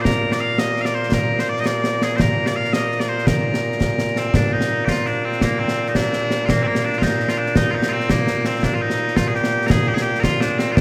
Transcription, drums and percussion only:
0.05 concert bass drum medium
0.05 snare medium
0.32 snare medium
0.58 snare loud
0.76 snare soft
0.85 snare medium
1.03 snare soft
1.12 concert bass drum medium
1.12 snare loud
1.39 snare medium
1.56 snare soft
1.66 snare loud
1.84 snare medium
2.02 snare medium
2.19 concert bass drum medium
2.19 snare loud
2.46 snare medium
2.64 snare soft
2.73 snare medium
2.91 snare soft
3.00 snare medium
3.18 snare soft
3.27 concert bass drum medium
3.27 snare loud
3.54 snare medium
3.72 snare soft
3.81 concert bass drum medium
3.81 snare medium
3.99 snare medium
4.07 snare soft
4.16 snare medium
4.34 concert bass drum medium
4.34 snare loud
4.61 snare medium
4.87 concert bass drum medium
4.87 snare medium
5.06 snare soft
5.32 snare soft
5.41 concert bass drum medium
5.41 snare medium
5.68 snare medium
5.86 snare soft
5.95 concert bass drum soft
5.95 snare medium
6.13 snare medium
6.31 snare medium
6.49 concert bass drum medium
6.49 snare medium
6.75 snare medium
6.93 snare soft
7.02 concert bass drum medium
7.02 snare medium
7.20 snare soft
7.28 snare medium
7.46 snare soft
7.56 concert bass drum medium
7.56 snare loud
7.82 snare medium
8.00 snare soft
8.09 concert bass drum medium
8.09 snare loud
8.27 snare medium
8.45 snare medium
8.63 concert bass drum medium
8.63 snare medium
8.90 snare medium
9.08 snare soft
9.17 concert bass drum medium
9.17 snare loud
9.35 snare soft
9.44 snare medium
9.62 snare soft
9.70 concert bass drum medium
9.70 snare loud
9.97 snare medium
10.15 snare soft
10.24 concert bass drum medium
10.24 snare loud
10.41 snare medium
10.59 snare medium
10.77 concert bass drum medium
10.77 snare loud

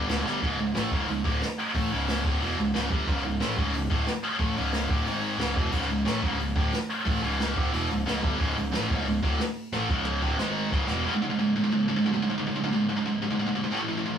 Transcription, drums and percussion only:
0.09 snare loud
0.09 crash medium
0.27 snare medium
0.42 kick medium
0.42 open hi-hat medium
0.58 open hi-hat medium
0.75 snare loud
0.75 open hi-hat medium
0.91 kick loud
0.91 open hi-hat medium
1.08 open hi-hat medium
1.25 kick loud
1.25 open hi-hat medium
1.41 snare loud
1.41 open hi-hat medium
1.58 open hi-hat medium
1.75 kick medium
1.75 open hi-hat medium
1.84 snare soft
1.91 open hi-hat medium
2.08 snare loud
2.08 open hi-hat medium
2.25 kick loud
2.25 open hi-hat medium
2.41 open hi-hat medium
2.58 open hi-hat medium
2.74 snare loud
2.74 open hi-hat medium
2.91 kick loud
2.91 open hi-hat medium
3.07 kick loud
3.07 open hi-hat medium
3.17 snare soft
3.24 open hi-hat medium
3.40 snare loud
3.40 open hi-hat medium
3.57 kick loud
3.57 open hi-hat medium
3.73 open hi-hat medium
3.90 kick loud
3.90 open hi-hat medium
4.06 snare loud
4.06 open hi-hat medium
4.23 open hi-hat medium
4.40 kick loud
4.40 open hi-hat medium
4.56 open hi-hat medium
4.72 snare loud
4.72 open hi-hat medium
4.89 kick loud
4.89 open hi-hat medium
5.06 open hi-hat medium
5.23 open hi-hat medium
5.39 snare loud
5.39 open hi-hat medium
5.56 kick loud
5.56 open hi-hat medium
5.72 kick loud
5.72 crash medium
5.81 snare soft
5.89 open hi-hat medium
6.06 snare loud
6.06 open hi-hat medium
6.22 kick loud
6.22 open hi-hat medium
6.39 open hi-hat medium
6.56 kick loud
6.72 snare loud
6.72 open hi-hat medium
6.89 open hi-hat medium
7.06 kick loud
7.06 open hi-hat medium
7.15 snare soft
7.23 open hi-hat medium
7.39 snare loud
7.39 open hi-hat medium
7.56 kick loud
7.56 open hi-hat medium
7.73 open hi-hat medium
7.90 open hi-hat medium
8.07 snare loud
8.07 open hi-hat medium
8.23 kick loud
8.23 open hi-hat medium
8.39 kick loud
8.39 open hi-hat medium
8.57 open hi-hat medium
8.73 snare loud
8.73 open hi-hat medium
8.90 kick loud
8.90 open hi-hat medium
9.06 open hi-hat medium
9.23 kick loud
9.23 open hi-hat medium
9.39 snare loud
9.39 open hi-hat medium
9.55 open hi-hat medium
9.73 snare medium
9.89 kick loud
10.05 mid tom medium
10.22 kick medium
10.39 snare medium
10.72 kick loud
10.89 snare medium

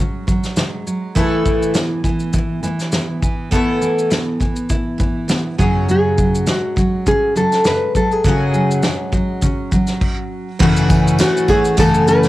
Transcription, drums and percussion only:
0.28 kick medium
0.28 shaker medium
0.44 snare soft
0.44 shaker soft
0.56 snare medium
0.56 shaker medium
0.87 shaker soft
1.16 kick medium
1.16 shaker medium
1.46 kick medium
1.46 shaker soft
1.63 shaker soft
1.75 snare medium
1.75 shaker medium
2.04 kick medium
2.04 shaker soft
2.20 shaker soft
2.33 kick medium
2.33 shaker medium
2.63 shaker medium
2.80 snare soft
2.80 shaker soft
2.92 snare medium
2.92 shaker medium
3.23 kick medium
3.23 shaker soft
3.52 kick medium
3.52 shaker soft
3.82 shaker soft
3.98 shaker soft
4.11 snare medium
4.11 shaker medium
4.40 kick medium
4.40 shaker soft
4.56 shaker soft
4.69 kick medium
4.69 shaker medium
5.00 kick medium
5.00 shaker soft
5.29 snare medium
5.29 shaker medium
5.59 kick medium
5.59 shaker soft
5.89 shaker medium
6.18 kick medium
6.18 shaker soft
6.35 shaker soft
6.47 snare loud
6.47 shaker medium
6.77 kick medium
6.77 shaker soft
7.07 kick medium
7.07 shaker medium
7.36 shaker soft
7.52 snare soft
7.52 shaker soft
7.64 snare loud
7.64 shaker medium
7.95 kick medium
7.95 shaker soft
8.12 shaker soft
8.24 kick medium
8.24 shaker medium
8.54 shaker soft
8.71 shaker soft
8.83 snare loud
8.83 shaker medium
9.13 kick medium
9.13 shaker soft
9.42 kick medium
9.42 shaker medium
9.72 kick medium
9.72 shaker soft
9.87 snare soft
9.87 shaker soft
10.01 kick medium
10.01 crash medium
10.60 kick loud
10.60 crash medium
10.76 shaker medium
10.90 kick loud
10.90 tambourine soft
10.90 shaker medium
11.07 shaker medium
11.19 snare loud
11.19 tambourine medium
11.19 shaker medium
11.37 shaker soft
11.48 kick medium
11.48 tambourine soft
11.65 shaker soft
11.77 kick medium
11.77 tambourine medium
11.77 shaker medium
11.94 shaker medium
12.08 tambourine soft
12.08 shaker medium
12.23 snare soft
12.23 shaker soft

